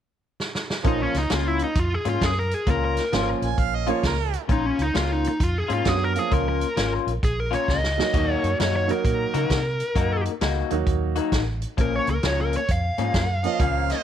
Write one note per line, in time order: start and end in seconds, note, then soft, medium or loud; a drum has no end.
0.40 snare medium
0.55 snare medium
0.70 snare medium
0.83 1.05 A#1 medium
0.83 1.19 A#2 medium
0.83 1.10 F3 medium
0.83 1.11 A#3 soft
0.83 1.19 A#3 medium
0.83 1.11 C#4 soft
0.83 1.19 C#4 medium
0.83 1.11 F4 medium
0.83 1.19 F4 medium
0.83 kick loud
0.83 closed hi-hat medium
0.87 1.01 D#4 medium
1.03 1.16 C#4 medium
1.14 1.25 C#2 medium
1.14 1.31 D#4 medium
1.14 snare soft
1.14 closed hi-hat medium
1.30 1.62 C#2 medium
1.30 1.64 A#2 medium
1.30 1.64 A#3 medium
1.30 1.65 C#4 medium
1.30 1.65 F4 medium
1.30 1.48 F4 medium
1.30 snare loud
1.30 closed hi-hat medium
1.48 1.61 E4 medium
1.59 closed hi-hat medium
1.63 1.79 D#4 medium
1.75 1.96 F2 medium
1.75 kick loud
1.75 closed hi-hat medium
1.79 1.94 F4 medium
1.94 2.07 G#4 medium
2.05 2.16 G#2 medium
2.05 2.30 A#2 medium
2.05 2.30 A#3 medium
2.05 2.30 C#4 medium
2.05 2.30 F4 medium
2.05 2.24 F4 medium
2.05 closed hi-hat medium
2.21 2.53 F#2 medium
2.21 2.38 G#4 medium
2.21 kick medium
2.21 snare loud
2.21 closed hi-hat medium
2.39 2.54 A#4 medium
2.51 2.68 G#4 medium
2.51 closed hi-hat medium
2.67 2.98 C#2 medium
2.67 3.01 A#2 medium
2.67 3.01 A#3 medium
2.67 3.01 C#4 medium
2.67 3.02 F4 medium
2.67 2.83 A#4 medium
2.67 kick medium
2.67 closed hi-hat medium
2.85 3.28 A#4 medium
2.97 snare soft
2.97 closed hi-hat medium
3.12 3.33 G#1 medium
3.12 3.47 A#2 medium
3.12 3.81 F3 medium
3.12 3.47 A#3 medium
3.12 3.82 A#3 soft
3.12 3.47 C#4 medium
3.12 3.82 C#4 soft
3.12 3.47 F4 medium
3.12 3.82 F4 medium
3.12 snare loud
3.12 closed hi-hat medium
3.42 3.53 A#1 medium
3.42 3.60 G#5 medium
3.42 closed hi-hat medium
3.58 3.89 A#1 medium
3.58 3.77 F5 medium
3.58 kick medium
3.58 closed hi-hat medium
3.75 3.92 D#5 medium
3.87 4.12 A#2 medium
3.87 4.02 F3 medium
3.87 4.12 A#3 medium
3.87 4.02 A#3 medium
3.87 4.12 C#4 medium
3.87 4.02 C#4 medium
3.87 4.12 F4 medium
3.87 4.03 F4 medium
3.87 4.04 C#5 medium
3.87 closed hi-hat soft
4.03 4.35 C#2 medium
4.03 4.41 A#4 medium
4.03 kick medium
4.03 snare loud
4.03 closed hi-hat medium
4.33 closed hi-hat medium
4.48 4.69 A#1 medium
4.48 4.83 A#2 medium
4.48 4.83 A#3 medium
4.48 4.83 C#4 medium
4.48 4.66 D#4 medium
4.48 4.83 F4 medium
4.48 kick medium
4.48 closed hi-hat medium
4.66 4.82 C#4 medium
4.79 4.90 C#2 medium
4.79 4.95 D#4 medium
4.79 closed hi-hat medium
4.94 5.26 C#2 medium
4.94 5.28 A#2 medium
4.94 5.29 A#3 medium
4.94 5.29 C#4 medium
4.94 5.29 F4 medium
4.94 5.10 F4 medium
4.94 snare loud
4.94 closed hi-hat medium
5.12 5.26 D#4 medium
5.24 5.41 D#4 medium
5.24 closed hi-hat medium
5.40 5.60 F2 medium
5.40 5.58 F4 medium
5.40 kick loud
5.40 closed hi-hat medium
5.58 5.73 G#4 medium
5.68 5.81 G#2 medium
5.68 5.94 A#2 medium
5.68 5.94 A#3 medium
5.68 5.94 C#4 medium
5.68 5.94 F4 medium
5.68 closed hi-hat medium
5.73 5.88 F4 medium
5.85 6.17 F#2 medium
5.85 6.12 F#3 medium
5.85 6.12 B3 medium
5.85 6.12 D4 medium
5.85 6.13 F#4 medium
5.85 6.04 G#4 medium
5.85 kick medium
5.85 snare medium
5.85 closed hi-hat medium
6.04 6.19 A#4 medium
6.15 6.55 F3 medium
6.15 6.55 A#3 medium
6.15 6.55 C#4 medium
6.15 6.56 F4 medium
6.15 closed hi-hat medium
6.19 6.32 G#4 medium
6.31 6.63 C#2 medium
6.31 6.65 A#2 medium
6.31 6.66 A#3 medium
6.31 6.66 C#4 medium
6.31 6.66 F4 medium
6.31 6.47 A#4 medium
6.31 kick medium
6.31 closed hi-hat medium
6.49 6.92 A#4 medium
6.61 closed hi-hat medium
6.76 6.97 G#1 medium
6.76 7.11 A#2 medium
6.76 7.11 A#3 medium
6.76 7.11 C#4 medium
6.76 7.11 F4 medium
6.76 snare loud
6.76 closed hi-hat medium
7.07 7.18 A#1 medium
7.07 closed hi-hat medium
7.23 7.54 A#1 medium
7.23 7.38 G#4 medium
7.23 kick medium
7.23 closed hi-hat medium
7.40 7.53 A#4 medium
7.51 7.77 A#2 medium
7.51 7.77 A#3 medium
7.51 7.77 C#4 medium
7.51 7.76 F4 medium
7.51 7.68 C#5 medium
7.51 closed hi-hat medium
7.68 7.99 C#2 medium
7.68 8.33 D#5 medium
7.68 kick medium
7.68 snare soft
7.84 snare medium
7.98 8.56 F#3 medium
7.98 8.56 A#3 medium
7.98 8.56 D#4 medium
7.98 8.57 F#4 medium
7.98 snare medium
8.14 8.34 D#2 medium
8.14 8.48 D#3 medium
8.14 8.48 A#3 medium
8.14 8.48 D#4 medium
8.14 8.48 F#4 medium
8.14 kick loud
8.14 closed hi-hat medium
8.14 crash medium
8.33 8.57 C#5 medium
8.43 8.54 F#2 medium
8.43 closed hi-hat medium
8.59 8.91 F#2 medium
8.59 8.93 D#3 medium
8.59 8.93 A#3 medium
8.59 8.94 D#4 medium
8.59 8.94 F#4 medium
8.59 8.75 C#5 medium
8.59 snare loud
8.59 closed hi-hat medium
8.76 8.90 C#5 medium
8.88 9.46 F#3 medium
8.88 9.47 A#3 medium
8.88 9.47 D#4 medium
8.88 9.47 F#4 medium
8.88 closed hi-hat medium
8.92 10.23 A#4 medium
9.05 9.25 A#2 medium
9.05 kick loud
9.05 closed hi-hat medium
9.34 9.45 C#3 medium
9.34 9.59 D#3 medium
9.34 9.59 A#3 medium
9.34 9.59 D#4 medium
9.34 9.59 F#4 medium
9.34 closed hi-hat medium
9.50 9.81 C3 medium
9.50 kick medium
9.50 snare loud
9.50 closed hi-hat medium
9.80 closed hi-hat medium
9.95 10.27 F#2 medium
9.95 10.30 D#3 medium
9.95 10.30 A#3 medium
9.95 10.30 D#4 medium
9.95 10.30 F#4 medium
9.95 kick loud
9.95 closed hi-hat medium
10.25 closed hi-hat medium
10.41 10.61 C#2 medium
10.41 10.75 D#3 medium
10.41 10.76 A#3 medium
10.41 10.76 D#4 medium
10.41 10.76 F#4 medium
10.41 snare loud
10.41 closed hi-hat medium
10.70 10.82 D#2 medium
10.70 11.29 F#3 medium
10.70 11.29 A#3 medium
10.70 11.29 D#4 medium
10.70 11.30 F#4 medium
10.70 closed hi-hat medium
10.86 11.18 D#2 medium
10.86 kick medium
10.86 closed hi-hat medium
11.16 11.41 D#3 medium
11.16 11.41 A#3 medium
11.16 11.41 D#4 medium
11.16 11.41 F#4 medium
11.16 closed hi-hat medium
11.32 11.63 A1 medium
11.32 kick medium
11.32 snare medium
11.32 closed hi-hat medium
11.62 closed hi-hat medium
11.77 11.98 A#1 medium
11.77 12.12 A#2 medium
11.77 12.12 F3 medium
11.77 12.12 A#3 medium
11.77 12.12 C#4 medium
11.77 11.96 A#4 medium
11.77 kick medium
11.77 closed hi-hat medium
11.96 12.09 C#5 medium
12.07 12.19 C#2 medium
12.07 12.24 A#4 medium
12.07 closed hi-hat medium
12.23 12.55 C#2 medium
12.23 12.57 A#2 medium
12.23 12.58 F3 medium
12.23 12.58 A#3 medium
12.23 12.58 C#4 medium
12.23 12.40 C#5 medium
12.23 snare loud
12.23 closed hi-hat medium
12.41 12.54 A#4 medium
12.53 closed hi-hat medium
12.57 12.70 C#5 medium
12.68 12.89 F2 medium
12.68 14.03 F5 medium
12.68 kick medium
12.68 closed hi-hat medium
12.98 13.09 G#2 medium
12.98 13.24 A#2 medium
12.98 13.24 F3 medium
12.98 13.23 A#3 medium
12.98 13.23 C#4 medium
12.98 closed hi-hat medium
13.14 13.46 F#2 medium
13.14 kick medium
13.14 snare medium
13.14 closed hi-hat medium
13.43 13.58 F3 medium
13.43 13.58 A#3 medium
13.43 13.59 C#4 medium
13.43 13.59 F4 medium
13.43 13.63 D#5 medium
13.43 closed hi-hat medium
13.60 13.91 C#2 medium
13.60 13.94 A#2 medium
13.60 13.94 F3 medium
13.60 13.94 A#3 medium
13.60 13.95 C#4 medium
13.60 13.93 F5 medium
13.60 kick loud
13.60 closed hi-hat medium
13.90 14.03 D#5 medium
13.90 snare soft
13.90 closed hi-hat medium